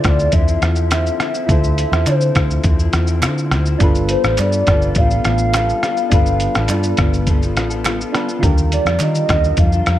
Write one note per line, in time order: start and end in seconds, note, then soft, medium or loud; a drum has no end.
0.00 0.31 D3 medium
0.00 1.44 E4 medium
0.00 1.45 F4 medium
0.00 1.46 A4 medium
0.00 1.46 C5 medium
0.00 0.34 D5 loud
0.00 closed hi-hat soft
0.00 shaker soft
0.05 0.28 D2 medium
0.05 0.33 F3 medium
0.05 0.33 C4 medium
0.05 0.34 E4 medium
0.05 kick medium
0.05 cross-stick medium
0.19 shaker medium
0.32 0.56 E2 medium
0.32 0.48 D3 medium
0.32 0.48 F3 medium
0.32 0.48 C4 medium
0.32 0.46 E4 medium
0.32 1.47 E5 loud
0.32 kick medium
0.32 closed hi-hat medium
0.32 shaker medium
0.47 0.90 F3 soft
0.47 0.91 C4 soft
0.47 0.91 E4 soft
0.47 shaker soft
0.62 1.08 E2 medium
0.62 cross-stick medium
0.62 closed hi-hat soft
0.62 shaker soft
0.76 shaker soft
0.91 1.18 D3 medium
0.91 1.19 F3 medium
0.91 1.20 C4 medium
0.91 1.21 E4 medium
0.91 cross-stick medium
0.91 clap medium
0.91 closed hi-hat medium
0.91 shaker medium
1.06 shaker soft
1.19 1.34 D3 medium
1.19 1.35 F3 medium
1.19 1.34 C4 medium
1.19 1.32 E4 medium
1.19 cross-stick medium
1.19 closed hi-hat medium
1.19 shaker soft
1.33 1.48 F3 soft
1.33 1.48 C4 soft
1.33 1.49 E4 medium
1.33 shaker soft
1.46 1.84 D2 loud
1.46 1.92 D3 medium
1.46 1.92 F3 medium
1.46 1.92 C4 medium
1.46 3.75 E4 medium
1.46 1.90 E4 medium
1.46 3.76 F4 medium
1.46 3.77 A4 medium
1.46 2.08 E5 loud
1.46 kick loud
1.46 closed hi-hat medium
1.46 shaker medium
1.52 3.78 C5 medium
1.64 shaker soft
1.78 closed hi-hat medium
1.78 shaker medium
1.91 2.04 E2 medium
1.91 2.05 F3 soft
1.91 2.06 C4 medium
1.91 2.06 E4 medium
1.91 cross-stick medium
1.91 shaker soft
2.05 2.34 D3 medium
2.05 2.30 D3 loud
2.05 2.34 F3 medium
2.05 2.35 C4 medium
2.05 2.36 E4 medium
2.05 2.65 C5 medium
2.05 clap medium
2.05 closed hi-hat medium
2.05 shaker medium
2.21 shaker medium
2.35 2.59 D2 medium
2.35 2.62 D3 medium
2.35 2.63 F3 medium
2.35 2.64 C4 medium
2.35 2.65 E4 medium
2.35 kick medium
2.35 cross-stick medium
2.35 closed hi-hat soft
2.35 shaker soft
2.51 shaker medium
2.63 2.88 E2 loud
2.63 2.79 D3 medium
2.63 2.79 F3 medium
2.63 2.78 C4 medium
2.63 2.77 E4 medium
2.63 kick medium
2.63 closed hi-hat medium
2.63 shaker medium
2.78 3.09 F3 medium
2.78 3.08 C4 medium
2.78 3.06 E4 medium
2.78 shaker soft
2.93 3.24 E2 medium
2.93 cross-stick medium
2.93 closed hi-hat soft
2.93 shaker medium
3.07 3.22 F3 soft
3.07 3.22 C4 medium
3.07 3.22 E4 medium
3.07 shaker soft
3.22 3.50 D3 medium
3.22 3.52 D3 loud
3.22 3.51 F3 medium
3.22 3.52 C4 medium
3.22 3.52 E4 loud
3.22 cross-stick loud
3.22 clap medium
3.22 closed hi-hat medium
3.22 shaker medium
3.38 shaker soft
3.51 3.74 D2 medium
3.51 3.66 D3 medium
3.51 3.66 F3 medium
3.51 3.66 C4 medium
3.51 3.65 E4 medium
3.51 cross-stick medium
3.51 closed hi-hat soft
3.51 shaker soft
3.66 3.80 F3 soft
3.66 3.81 C4 medium
3.66 3.81 E4 medium
3.66 shaker medium
3.79 4.15 G1 loud
3.79 4.24 G3 medium
3.79 4.24 B3 medium
3.79 6.07 D4 medium
3.79 6.08 F4 medium
3.79 4.25 F4 loud
3.79 6.08 A4 medium
3.79 4.23 A4 medium
3.79 kick loud
3.79 closed hi-hat medium
3.79 shaker medium
3.83 6.09 B4 medium
3.95 shaker medium
4.09 4.37 C5 medium
4.09 closed hi-hat medium
4.09 shaker medium
4.24 4.36 A1 medium
4.24 4.38 B3 soft
4.24 4.39 F4 soft
4.24 4.38 A4 medium
4.24 cross-stick medium
4.24 shaker soft
4.37 4.62 G2 medium
4.37 4.66 G3 medium
4.37 4.67 B3 medium
4.37 4.68 F4 medium
4.37 4.68 A4 medium
4.37 4.99 D5 loud
4.37 clap medium
4.37 closed hi-hat medium
4.37 shaker medium
4.52 shaker medium
4.67 4.91 G1 medium
4.67 4.95 G3 medium
4.67 4.96 B3 medium
4.67 4.97 F4 medium
4.67 4.98 A4 medium
4.67 kick medium
4.67 cross-stick medium
4.67 closed hi-hat soft
4.67 shaker soft
4.82 shaker medium
4.95 5.19 A1 medium
4.95 5.11 G3 medium
4.95 5.11 B3 medium
4.95 5.11 F4 medium
4.95 6.11 F5 loud
4.95 kick medium
4.95 closed hi-hat medium
4.95 shaker medium
4.99 5.10 A4 medium
5.11 5.54 B3 soft
5.11 5.54 F4 soft
5.11 5.54 A4 medium
5.11 shaker soft
5.24 5.71 A1 medium
5.24 cross-stick medium
5.24 closed hi-hat medium
5.24 shaker medium
5.38 shaker medium
5.53 5.82 G3 medium
5.53 5.83 B3 medium
5.53 5.84 F4 medium
5.53 5.84 A4 medium
5.53 cross-stick medium
5.53 clap medium
5.53 closed hi-hat medium
5.53 shaker medium
5.69 shaker medium
5.83 5.97 G3 medium
5.83 5.98 B3 medium
5.83 5.98 F4 medium
5.83 5.96 A4 medium
5.83 cross-stick medium
5.83 closed hi-hat soft
5.83 shaker soft
5.97 6.11 B3 soft
5.97 6.12 F4 soft
5.97 6.12 A4 medium
5.97 shaker medium
6.10 6.46 G1 loud
6.10 6.55 G3 medium
6.10 6.55 B3 medium
6.10 8.09 D4 medium
6.10 8.10 F4 medium
6.10 6.55 F4 medium
6.10 8.11 A4 medium
6.10 6.54 A4 medium
6.10 6.71 F5 loud
6.10 kick loud
6.10 closed hi-hat medium
6.10 shaker medium
6.14 8.11 B4 medium
6.26 shaker soft
6.40 closed hi-hat medium
6.40 shaker soft
6.55 6.67 A1 medium
6.55 6.69 B3 soft
6.55 6.70 F4 soft
6.55 6.70 A4 medium
6.55 cross-stick medium
6.55 shaker soft
6.68 6.93 G2 medium
6.68 6.97 G3 medium
6.68 6.98 B3 medium
6.68 6.99 F4 medium
6.68 6.99 A4 medium
6.68 7.27 D5 medium
6.68 clap medium
6.68 closed hi-hat medium
6.68 shaker medium
6.83 shaker medium
6.97 7.56 G1 medium
6.97 7.25 G3 medium
6.97 7.27 B3 medium
6.97 7.27 F4 medium
6.97 7.28 A4 medium
6.97 kick loud
6.97 cross-stick loud
6.97 closed hi-hat soft
6.97 shaker soft
7.14 shaker medium
7.27 7.41 G3 medium
7.27 7.42 B3 medium
7.27 7.41 F4 medium
7.27 7.39 A4 medium
7.27 kick medium
7.27 closed hi-hat medium
7.27 shaker medium
7.41 7.71 B3 medium
7.41 7.70 F4 medium
7.41 7.69 A4 medium
7.41 shaker soft
7.56 8.02 A1 medium
7.56 cross-stick medium
7.56 closed hi-hat soft
7.56 shaker soft
7.70 7.84 B3 soft
7.70 7.84 F4 soft
7.70 7.85 A4 medium
7.70 shaker medium
7.84 7.99 G3 medium
7.84 8.00 B3 medium
7.84 7.99 F4 medium
7.84 7.97 A4 medium
7.84 cross-stick medium
7.84 clap medium
7.84 closed hi-hat medium
7.84 shaker medium
7.98 8.13 B3 soft
7.98 8.14 F4 soft
7.98 8.13 A4 medium
7.98 shaker soft
8.12 8.28 G3 medium
8.12 8.29 B3 medium
8.12 8.42 D4 medium
8.12 8.39 F4 medium
8.12 8.28 F4 medium
8.12 8.43 A4 soft
8.12 8.27 A4 medium
8.12 8.43 B4 medium
8.12 cross-stick medium
8.12 closed hi-hat soft
8.12 shaker soft
8.28 8.43 B3 soft
8.28 8.43 F4 medium
8.28 8.43 A4 medium
8.28 shaker medium
8.39 9.99 D3 medium
8.39 8.86 D#3 medium
8.39 8.86 G3 medium
8.39 9.99 F4 medium
8.39 9.99 G4 medium
8.39 kick loud
8.43 8.78 D#2 loud
8.43 8.86 D4 loud
8.43 8.84 F4 medium
8.43 9.99 A#4 medium
8.43 closed hi-hat medium
8.43 shaker medium
8.58 shaker soft
8.72 9.03 D5 medium
8.72 closed hi-hat medium
8.72 shaker medium
8.85 8.97 F2 medium
8.85 9.00 G3 soft
8.85 9.00 D4 soft
8.85 9.00 F4 medium
8.85 cross-stick medium
8.85 shaker soft
8.99 9.27 D#3 medium
8.99 9.24 D#3 medium
8.99 9.28 G3 medium
8.99 9.29 D4 medium
8.99 9.30 F4 medium
8.99 9.61 D#5 medium
8.99 clap medium
8.99 closed hi-hat medium
8.99 shaker medium
9.15 shaker medium
9.28 9.53 D#2 medium
9.28 9.56 D#3 medium
9.28 9.57 G3 medium
9.28 9.57 D4 medium
9.28 9.58 F4 medium
9.28 kick medium
9.28 cross-stick medium
9.28 closed hi-hat soft
9.28 shaker medium
9.44 shaker medium
9.57 9.81 F2 medium
9.57 9.72 D#3 medium
9.57 9.73 G3 medium
9.57 9.72 D4 medium
9.57 9.71 F4 medium
9.57 9.99 F5 loud
9.57 kick medium
9.57 closed hi-hat medium
9.57 shaker medium
9.72 9.99 G3 soft
9.72 9.99 D4 soft
9.72 9.99 F4 medium
9.72 shaker soft
9.86 9.99 F2 medium
9.86 cross-stick medium
9.86 closed hi-hat medium
9.86 shaker soft